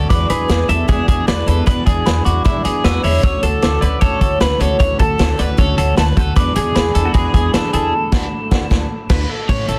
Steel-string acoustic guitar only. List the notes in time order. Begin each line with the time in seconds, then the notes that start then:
Already playing: A3 C#4 F#4
0.10 E2 B2 E3 G#3 D4 E4
0.29 E3 G#3 D4 E4
0.48 E3 G#3 D4 E4
0.68 E3 G#3 D4 E4
0.88 E2 B2 E3 G#3 D4 E4
1.08 E3 G#3 D4 E4
1.27 E3 G#3 D4 E4
1.47 E3 G#3 D4 E4
1.66 E2 B2 E3 G#3 D4 E4
1.86 E3 G#3 D4 E4
2.06 E3 G#3 D4 E4
2.25 E3 G#3 D4 E4
2.45 E2 B2 E3 G#3 D4 E4
2.64 E3 G#3 D4 E4
2.84 E3 G#3 D4 E4
3.03 E3 G#3 D4 E4
3.23 D3 A3 C#4 F#4
3.43 A3 C#4 F#4
3.62 D3 A3 C#4 F#4
3.82 A3 C#4 F#4
4.01 D3 A3 C#4 F#4
4.21 A3 C#4 F#4
4.40 D3 A3 C#4 F#4
4.60 A3 C#4 F#4
4.79 D3 A3 C#4 F#4
4.99 A3 C#4 F#4
5.18 D3 A3 C#4 F#4
5.38 A3 C#4 F#4
5.57 D3 A3 C#4 F#4
5.77 A3 C#4 F#4
5.97 D3 A3 C#4 F#4
6.16 A3 C#4 F#4
6.36 E2 B2 E3 G#3 D4 E4
6.55 E3 G#3 D4 E4
6.75 E3 G#3 D4 E4
6.95 E3 G#3 D4 E4
7.15 E2 B2 E3 G#3 D4 E4
7.34 E3 G#3 D4 E4
7.53 E3 G#3 D4 E4
7.73 E3 G#3 D4 E4
8.12 A3 D4 F#4
8.51 A3 D4 F#4
8.70 D3 A3 D4 F#4
9.09 D3 A3 D4 F#4
9.49 A2 E3 A3 C#4 E4
9.68 A3 C#4 E4